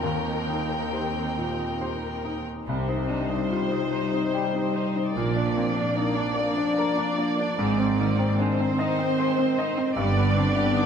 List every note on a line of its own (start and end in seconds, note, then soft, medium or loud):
0.00 2.64 D#2 soft
0.00 2.71 D#3 soft
0.00 0.91 G4 soft
0.00 2.44 A#4 medium
0.00 2.65 A#4 soft
0.00 2.43 G5 soft
0.05 2.44 D#2 soft
0.05 2.48 C4 soft
0.05 2.44 D#4 soft
0.48 2.71 A#3 soft
0.48 1.21 D#4 soft
0.92 1.80 G4 soft
0.92 1.34 G4 soft
0.92 1.34 C5 soft
1.37 2.08 A#2 soft
1.37 3.90 C5 soft
1.81 3.49 G4 soft
1.81 2.21 G4 soft
1.81 2.21 C5 soft
2.25 5.19 D#4 soft
2.25 2.68 D#4 soft
2.67 3.37 C2 medium
2.67 5.13 C2 soft
2.67 5.19 C3 soft
2.67 3.37 C3 medium
2.67 5.12 G3 soft
2.67 2.87 G3 soft
2.67 5.13 G3 medium
2.67 5.13 D#4 medium
2.67 5.12 C5 soft
2.88 3.09 C4 soft
2.88 3.22 D#4 soft
3.08 5.19 G3 soft
3.08 3.30 D4 soft
3.08 3.30 D#4 soft
3.29 3.50 C4 soft
3.29 3.63 D#4 soft
3.49 3.71 G3 soft
3.49 3.72 F4 soft
3.49 5.20 G4 soft
3.71 3.92 C4 soft
3.71 4.05 D#4 soft
3.91 4.12 D#4 soft
3.91 5.19 C5 soft
3.91 4.26 C5 soft
4.12 4.33 C4 soft
4.12 4.47 D#4 soft
4.33 4.54 G3 soft
4.33 4.67 G4 soft
4.33 5.19 G5 soft
4.54 4.75 C4 soft
4.54 4.88 D#4 soft
4.75 4.96 D#4 soft
4.75 5.08 C5 soft
4.75 5.20 D#5 soft
4.96 5.17 C4 soft
4.96 5.16 D#4 soft
5.14 5.84 A#1 medium
5.14 7.63 A#2 soft
5.14 7.56 A#2 soft
5.14 5.84 A#2 medium
5.14 7.56 F3 medium
5.14 5.34 A#3 soft
5.14 7.56 A#3 soft
5.14 7.56 D4 medium
5.14 8.40 D5 soft
5.34 5.56 D4 soft
5.34 5.69 D4 soft
5.55 7.63 F3 soft
5.55 5.76 A#3 soft
5.55 5.77 C4 soft
5.74 5.95 D4 soft
5.74 6.09 D4 soft
5.94 6.16 A#3 soft
5.94 6.17 D#4 soft
5.94 7.63 A#4 soft
6.14 6.36 D4 soft
6.14 6.50 D4 soft
6.34 6.56 A#3 soft
6.34 7.17 D5 soft
6.34 6.70 D5 soft
6.55 6.77 D4 soft
6.55 6.90 D4 soft
6.74 6.96 A#3 soft
6.74 7.63 A#5 soft
6.78 7.11 A#4 soft
6.96 7.18 D4 soft
6.96 7.31 D4 soft
7.17 7.39 A#3 soft
7.17 7.63 D5 soft
7.17 7.52 D5 soft
7.39 7.60 D4 soft
7.59 8.27 G#1 medium
7.59 9.93 G#2 medium
7.59 10.01 G#2 medium
7.59 8.28 G#2 medium
7.59 9.94 D#3 medium
7.59 7.78 G#3 medium
7.59 9.94 C4 medium
7.59 9.94 C4 soft
7.79 8.00 C4 soft
7.79 8.12 C4 soft
8.00 10.01 D#3 soft
8.00 8.21 A#3 soft
8.00 8.20 D#4 soft
8.19 8.52 C4 soft
8.19 8.40 C4 soft
8.39 8.60 G#3 medium
8.39 8.60 D4 soft
8.39 9.58 C5 soft
8.39 9.98 C5 medium
8.60 8.80 C4 soft
8.60 8.92 C4 soft
8.79 9.00 D#4 medium
8.79 9.11 D#5 soft
8.79 10.01 D#5 soft
8.99 9.31 C4 soft
8.99 9.19 C4 soft
9.18 9.39 G#3 medium
9.18 9.50 C5 soft
9.18 10.01 C6 soft
9.39 9.58 C4 medium
9.39 9.70 C4 soft
9.59 9.78 D#4 medium
9.59 10.01 C5 soft
9.59 9.90 D#5 soft
9.78 9.98 C4 soft
9.78 9.98 C4 medium
9.97 10.63 G1 medium
9.97 10.86 G2 medium
9.97 10.63 G2 medium
9.97 10.86 D3 medium
9.97 10.16 G3 medium
9.97 10.86 B3 medium
9.97 10.86 D5 medium
10.17 10.37 B3 medium
10.17 10.48 D4 soft
10.36 10.86 D3 soft
10.36 10.57 C4 soft
10.36 10.56 D4 medium
10.56 10.86 D4 soft
10.56 10.76 G4 medium
10.75 10.86 D4 medium
10.75 10.86 D#4 soft
10.75 10.86 G4 medium